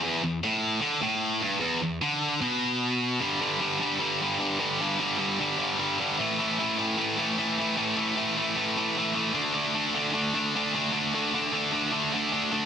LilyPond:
\new Staff \with { instrumentName = "Distorted electric guitar" } { \clef bass \time 4/4 \key g \major \tempo 4 = 151 e,8 e,8 a,4 d8 a,4 g,8 | e,8 e,8 d4 b,2 | <g, d g>8 <g, d g>8 <g, d g>8 <g, d g>8 <g, d g>8 <g, d g>8 <g, d g>8 <g, d g>8 | <g, d g>8 <g, d g>8 <g, d g>8 <g, d g>8 <g, d g>8 <g, d g>8 <g, d g>8 <a, e a>8 |
<a, e a>8 <a, e a>8 <a, e a>8 <a, e a>8 <a, e a>8 <a, e a>8 <a, e a>8 <a, e a>8 | <a, e a>8 <a, e a>8 <a, e a>8 <a, e a>8 <a, e a>8 <a, e a>8 <a, e a>8 <d a d'>8 | <d a d'>8 <d a d'>8 <d a d'>8 <d a d'>8 <d a d'>8 <d a d'>8 <d a d'>8 <d a d'>8 | <d a d'>8 <d a d'>8 <d a d'>8 <d a d'>8 <d a d'>8 <d a d'>8 <d a d'>8 <d a d'>8 | }